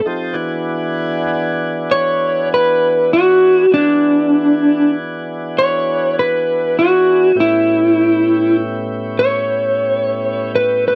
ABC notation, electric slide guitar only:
X:1
M:12/8
L:1/16
Q:3/8=66
K:Emix
V:1 name="Electric slide guitar"
z12 c4 B4 F4 | D8 z4 c4 B4 F4 | E8 z4 c8- c B2 B |]